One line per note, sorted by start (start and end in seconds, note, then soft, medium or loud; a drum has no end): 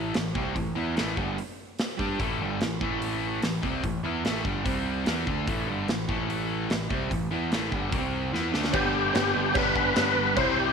0.00 0.11 A1 medium
0.00 0.13 A2 medium
0.00 0.13 E3 medium
0.00 0.15 A3 loud
0.14 0.34 A1 medium
0.14 0.31 A2 medium
0.14 0.31 E3 medium
0.14 snare loud
0.14 open hi-hat medium
0.35 0.55 C2 medium
0.35 0.54 C3 medium
0.35 0.54 G3 medium
0.35 0.56 C4 medium
0.35 kick medium
0.55 0.75 A1 medium
0.55 0.72 A2 medium
0.55 0.72 E3 medium
0.55 kick medium
0.55 open hi-hat soft
0.75 0.95 E2 medium
0.75 0.95 E3 medium
0.75 0.96 B3 medium
0.75 0.96 E4 medium
0.96 1.16 A1 medium
0.96 1.16 A2 medium
0.96 1.16 E3 medium
0.96 1.17 A3 medium
0.96 snare medium
0.96 open hi-hat soft
1.16 1.36 G1 medium
1.16 1.37 G2 medium
1.16 1.37 D3 medium
1.16 1.37 G3 medium
1.16 kick medium
1.38 open hi-hat soft
1.79 snare loud
1.79 open hi-hat soft
1.99 2.18 G2 medium
1.99 2.19 G3 medium
1.99 2.19 D4 medium
1.99 2.19 G4 medium
1.99 kick medium
2.19 2.39 A1 medium
2.19 2.39 A2 medium
2.19 2.40 E3 medium
2.19 2.40 A3 medium
2.19 kick loud
2.19 open hi-hat soft
2.39 2.60 G1 medium
2.39 2.60 G2 medium
2.39 2.60 D3 medium
2.39 2.60 G3 medium
2.61 2.80 A1 medium
2.61 2.77 A2 medium
2.61 2.77 E3 medium
2.61 snare loud
2.61 open hi-hat soft
2.81 3.39 A1 medium
2.81 3.41 A2 medium
2.81 3.42 E3 medium
2.81 3.42 A3 loud
2.81 kick medium
3.02 open hi-hat medium
3.42 3.62 A1 medium
3.42 3.59 A2 medium
3.42 3.59 E3 medium
3.42 snare loud
3.42 open hi-hat soft
3.62 3.82 C2 medium
3.62 3.82 C3 medium
3.62 3.83 G3 medium
3.62 3.83 C4 medium
3.62 kick medium
3.83 4.03 A1 medium
3.83 4.00 A2 medium
3.83 4.00 E3 medium
3.83 kick medium
3.83 open hi-hat soft
4.04 4.24 E2 medium
4.04 4.24 E3 medium
4.04 4.24 B3 medium
4.04 4.24 E4 medium
4.24 4.44 A1 medium
4.24 4.44 A2 medium
4.24 4.45 E3 medium
4.24 4.45 A3 medium
4.24 snare loud
4.24 open hi-hat soft
4.44 4.64 G1 medium
4.44 4.64 G2 medium
4.44 4.64 D3 medium
4.44 4.64 G3 medium
4.44 kick medium
4.64 5.04 C2 medium
4.64 5.05 C3 medium
4.64 5.06 G3 medium
4.64 5.06 C4 medium
4.64 kick loud
4.64 open hi-hat medium
5.05 5.26 E2 medium
5.05 5.25 E3 medium
5.05 5.26 B3 medium
5.05 5.26 E4 medium
5.05 snare loud
5.05 open hi-hat soft
5.26 5.46 D2 medium
5.26 5.46 D3 medium
5.26 5.46 A3 medium
5.26 5.46 D4 medium
5.26 kick medium
5.47 5.67 A1 medium
5.47 5.67 A2 medium
5.47 5.67 E3 medium
5.47 5.67 A3 medium
5.47 kick medium
5.47 open hi-hat soft
5.67 5.87 G1 medium
5.67 5.87 G2 medium
5.67 5.88 D3 medium
5.67 5.88 G3 medium
5.88 6.07 A1 medium
5.88 6.05 A2 medium
5.88 6.05 E3 medium
5.88 snare loud
5.88 open hi-hat soft
6.08 6.66 A1 medium
6.08 6.69 A2 medium
6.08 6.70 E3 medium
6.08 6.70 A3 medium
6.08 kick medium
6.30 open hi-hat soft
6.70 6.89 A1 medium
6.70 6.87 A2 medium
6.70 6.87 E3 medium
6.70 snare loud
6.70 open hi-hat soft
6.90 7.10 C2 medium
6.90 7.10 C3 medium
6.90 7.10 G3 medium
6.90 7.10 C4 medium
6.90 kick medium
7.11 7.30 A1 medium
7.11 7.27 A2 medium
7.11 7.27 E3 medium
7.11 kick medium
7.11 open hi-hat soft
7.31 7.51 E2 medium
7.31 7.51 E3 medium
7.31 7.51 B3 medium
7.31 7.51 E4 medium
7.51 7.71 A1 medium
7.51 7.71 A2 medium
7.51 7.72 E3 medium
7.51 7.72 A3 medium
7.51 snare medium
7.51 open hi-hat soft
7.72 7.92 G1 medium
7.72 7.92 G2 medium
7.72 7.92 D3 medium
7.72 7.92 G3 medium
7.72 kick medium
7.92 8.31 C2 medium
7.92 8.33 C3 medium
7.92 8.33 G3 medium
7.92 8.33 C4 medium
7.92 kick loud
7.92 open hi-hat soft
8.33 8.52 E2 medium
8.33 8.52 E3 medium
8.33 8.52 B3 medium
8.33 8.53 E4 medium
8.33 snare medium
8.52 8.73 D2 medium
8.52 8.71 D3 medium
8.52 8.72 A3 medium
8.52 8.73 D4 medium
8.52 snare medium
8.64 snare medium
8.72 9.10 G1 medium
8.72 9.14 G2 loud
8.72 9.13 D3 loud
8.72 8.94 G3 medium
8.72 8.93 B3 medium
8.72 9.07 B3 loud
8.72 8.92 D4 medium
8.72 9.07 D4 medium
8.72 9.15 G4 medium
8.72 9.07 G4 loud
8.72 9.07 B4 loud
8.72 kick loud
8.72 cowbell loud
8.72 crash medium
8.93 9.14 G3 medium
8.93 9.14 B3 medium
8.93 9.15 D4 medium
9.14 9.33 G1 medium
9.14 9.35 D3 medium
9.14 9.35 G3 medium
9.14 9.47 B3 medium
9.14 9.33 B3 medium
9.14 9.47 D4 medium
9.14 9.33 D4 medium
9.14 9.47 G4 medium
9.14 9.57 G4 medium
9.14 9.48 B4 medium
9.14 snare loud
9.14 cowbell medium
9.14 crash medium
9.34 9.54 G1 medium
9.34 9.77 G2 medium
9.34 9.53 D3 medium
9.34 9.54 G3 medium
9.34 9.55 B3 medium
9.34 9.55 D4 medium
9.54 9.74 G1 loud
9.54 10.35 G2 medium
9.54 9.95 D3 medium
9.54 9.76 G3 medium
9.54 9.88 B3 medium
9.54 9.75 B3 medium
9.54 9.88 D4 medium
9.54 9.73 D4 medium
9.54 9.88 G4 medium
9.54 9.96 B4 loud
9.54 9.88 B4 medium
9.54 kick loud
9.54 cowbell medium
9.54 crash medium
9.75 9.94 G1 medium
9.75 9.95 G3 medium
9.75 9.96 B3 medium
9.75 9.96 D4 medium
9.75 kick medium
9.95 10.15 G1 medium
9.95 10.35 G2 medium
9.95 10.35 D3 medium
9.95 10.17 G3 loud
9.95 10.29 B3 medium
9.95 10.16 B3 loud
9.95 10.29 D4 medium
9.95 10.14 D4 loud
9.95 10.29 G4 medium
9.95 10.29 B4 medium
9.95 10.39 B4 loud
9.95 snare loud
9.95 cowbell medium
9.95 crash medium
10.16 10.35 G1 medium
10.16 10.36 G3 medium
10.16 10.36 B3 medium
10.16 10.35 D4 medium
10.36 10.73 C2 loud
10.36 10.73 C3 medium
10.36 10.57 G3 loud
10.36 10.57 C4 medium
10.36 10.70 C4 loud
10.36 10.70 E4 medium
10.36 10.55 E4 medium
10.36 10.70 G4 medium
10.36 10.58 C5 loud
10.36 10.70 C5 loud
10.36 kick loud
10.36 cowbell loud
10.36 crash medium
10.57 10.73 G3 medium
10.57 10.73 C4 medium
10.57 10.73 E4 medium
10.57 10.73 G4 medium